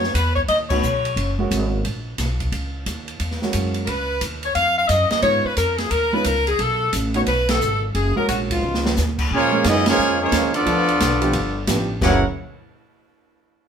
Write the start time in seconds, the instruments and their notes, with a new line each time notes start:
Already playing: upright bass F#2, saxophone section C#5
0.03 snare
0.14 upright bass E2, saxophone section B4, kick, hi-hat pedal, ride
0.36 saxophone section C#5, kick
0.48 upright bass D#2, saxophone section D#5, kick, ride
0.69 grand piano A3 B3 C#4 D#4 F#4, saxophone section C#5, kick, crash
0.82 upright bass B1, hi-hat pedal
1.05 ride
1.16 upright bass F#1, kick, ride
1.38 grand piano G#3 A#3 C#4 E4 F#4
1.51 upright bass G#1, kick, hi-hat pedal, ride
1.85 upright bass A#1, kick, ride
2.18 upright bass B1, kick, snare, hi-hat pedal, ride
2.40 kick, ride
2.52 upright bass C#2, kick, ride
2.86 upright bass D#2, kick, hi-hat pedal, ride
3.08 ride
3.20 upright bass E2, kick, ride
3.31 snare
3.42 grand piano G#3 A#3 C#4 E4 F#4, snare
3.53 upright bass F#2, kick, hi-hat pedal, ride
3.74 ride
3.85 upright bass C#2, saxophone section A#4, kick, ride
3.90 saxophone section B4
4.21 upright bass D#2, kick, hi-hat pedal, ride
4.43 saxophone section C#5, ride
4.55 upright bass F2, saxophone section F5, kick, ride
4.78 saxophone section F5
4.88 upright bass F#2, saxophone section D#5, kick, hi-hat pedal, ride
5.10 saxophone section D#5, muted upright bass stroke, snare, ride
5.22 upright bass G#2, grand piano G#3 B3 C#4 D#4 F4, saxophone section C#5, kick, ride
5.45 saxophone section B4, muted upright bass stroke
5.57 upright bass F2, saxophone section A#4, kick, hi-hat pedal, ride
5.78 saxophone section G#4, snare, ride
5.91 upright bass D#2, saxophone section A#4, kick, ride
6.13 grand piano G#3 B3 C#4 D#4 F4, saxophone section B4
6.24 upright bass C#2, saxophone section A#4, kick, hi-hat pedal, ride
6.47 saxophone section G#4, ride
6.59 upright bass B1, saxophone section A4, kick, ride
6.93 upright bass A1, kick, hi-hat pedal, ride
7.14 grand piano A3 B3 C#4 D#4 F#4, saxophone section C#5, ride
7.26 upright bass B1, saxophone section B4, kick, ride
7.49 saxophone section A4, snare, ride
7.61 upright bass G#1, hi-hat pedal
7.95 upright bass F#1, saxophone section G#4, kick, ride
8.16 grand piano G#3 A#3 C#4 E4 F#4, saxophone section A#4, muted upright bass stroke
8.28 upright bass A#1, saxophone section F#4, kick, hi-hat pedal, ride
8.51 trombone section G#2 B2 F3, saxophone section F4, kick, ride
8.63 upright bass C#2
8.74 snare
8.86 snare
8.96 upright bass D#2, snare, hi-hat pedal
9.19 kick, crash
9.31 upright bass A#2, trombone section F3 G#3 C#4, trumpet section A#3 F4 G#4 C#5
9.52 grand piano G#3 A#3 C#4 F4 G#4
9.64 upright bass F#2, trumpet section B3 E4 G#4 D#5, trombone section D#4, kick, snare, hi-hat pedal, ride
9.86 trombone section F3 G#3 C#4, trumpet section A#3 F4 G#4 C#5, snare, ride
9.98 upright bass F2
10.21 trombone section F3 G#3 C#4, trumpet section A#3 F4 G#4 C#5
10.32 upright bass D#2, kick, snare, hi-hat pedal, ride
10.54 trombone section F3 B3 D4, trumpet section B3 F4 A4 D5, ride
10.66 upright bass D2, grand piano F3 B3 D4 E4 A4, kick, ride
10.88 ride
11.00 upright bass B1, kick, snare, hi-hat pedal, ride
11.21 grand piano F3 B3 D4 E4 G4, ride
11.33 upright bass G1, kick, ride
11.67 upright bass A1, grand piano F3 B3 D4 E4 G4, kick, snare, hi-hat pedal, ride
12.00 upright bass F#1, trombone section F#2 C#3 E3 A#3, grand piano F#3 A#3 C#4 E4 G#4, trumpet section E4 A#4 C#5 F#5, kick, snare, crash